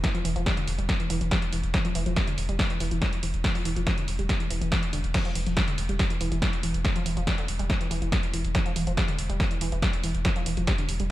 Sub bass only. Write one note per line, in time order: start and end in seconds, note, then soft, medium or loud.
0.25 0.35 E1 loud
0.36 0.46 E1 medium
0.67 0.78 E1 loud
0.78 0.89 E1 medium
1.10 1.20 E1 loud
1.21 1.31 E1 medium
1.53 1.63 E1 loud
1.63 1.74 E1 medium
1.95 2.06 E1 loud
2.06 2.16 E1 medium
2.38 2.48 E1 loud
2.49 2.59 E1 medium
2.80 2.91 E1 loud
2.91 3.01 E1 medium
3.23 3.33 E1 loud
3.34 3.44 E1 medium
3.65 3.76 E1 loud
3.76 3.86 E1 medium
4.08 4.18 E1 loud
4.19 4.29 E1 medium
4.50 4.61 E1 loud
4.62 4.72 E1 medium
4.93 5.03 E1 loud
5.04 5.14 E1 medium
5.35 5.46 E1 loud
5.47 5.57 E1 medium
5.78 5.88 E1 loud
5.89 5.99 E1 medium
6.21 6.31 E1 loud
6.32 6.42 E1 medium
6.63 6.74 E1 loud
6.74 6.84 E1 medium
7.06 7.16 E1 loud
7.17 7.27 E1 medium
7.48 7.59 E1 loud
7.59 7.69 E1 medium
7.91 8.01 E1 loud
8.02 8.12 E1 medium
8.33 8.44 E1 loud
8.44 8.55 E1 medium
8.76 8.86 E1 loud
8.87 8.97 E1 medium
9.19 9.29 E1 loud
9.30 9.40 E1 medium
9.61 9.72 E1 loud
9.72 9.82 E1 medium
10.04 10.14 E1 loud
10.15 10.25 E1 medium
10.46 10.57 E1 loud
10.57 10.67 E1 medium
10.89 10.99 E1 loud
11.00 11.10 E1 medium